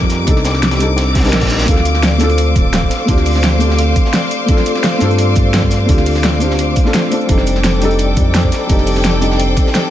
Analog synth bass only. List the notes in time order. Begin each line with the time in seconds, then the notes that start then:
Already playing: F2
0.28 C2
1.33 A#1
1.68 D2
2.56 D1
3.08 D2
5.01 G2
5.89 D2
7.29 F1
8.17 F2
8.70 F1